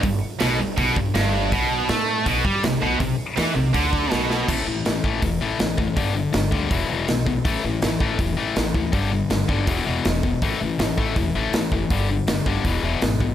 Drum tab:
CC |--------|--------|--------|x-------|
HH |o-o-o-o-|o-o-o-o-|o-o-o-o-|--o-o-o-|
SD |--o---o-|--o---o-|--o---oo|--o---o-|
BD |o---oo--|o---oo--|o---oo--|o--oo--o|

CC |--------|--------|--------|--------|
HH |o-o-o-o-|o-o-o-o-|o-o-o-o-|o-o-o-o-|
SD |--o---o-|--o---o-|--o---o-|--o---o-|
BD |o--oo--o|o--oo--o|o--oo--o|o--oo--o|

CC |--------|
HH |o-o-o-o-|
SD |--o---o-|
BD |o--oo--o|